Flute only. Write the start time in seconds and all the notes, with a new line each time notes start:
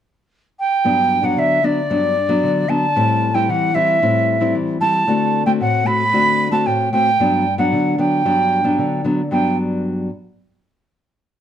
0.59 G5
1.24 F#5
1.38 E5
1.64 D5
2.69 A5
3.34 G5
3.50 F#5
3.74 E5
4.80 A5
5.46 G5
5.61 F#5
5.86 B5
6.52 A5
6.66 G5
6.92 G5
7.58 F#5
7.99 G5
9.32 G5